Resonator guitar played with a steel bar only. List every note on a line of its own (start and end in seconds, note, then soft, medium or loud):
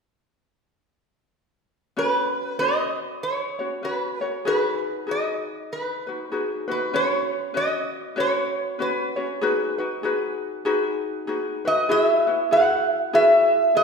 1.99 2.59 B4 medium
2.59 3.23 D#5 medium
3.23 3.87 C#5 medium
3.85 4.19 B4 medium
4.19 4.31 A#4 medium
4.47 5.11 B4 medium
5.11 5.74 D#5 medium
5.73 6.67 B4 medium
6.71 6.96 B4 medium
6.96 7.57 C#5 medium
7.57 8.20 D#5 medium
8.20 8.81 C#5 medium
8.82 9.27 B4 medium
11.67 11.91 D#5 medium
11.91 12.02 D#5 medium
12.02 12.52 E5 medium
12.53 13.14 F#5 medium
13.15 13.76 E5 medium
13.77 13.84 D#5 medium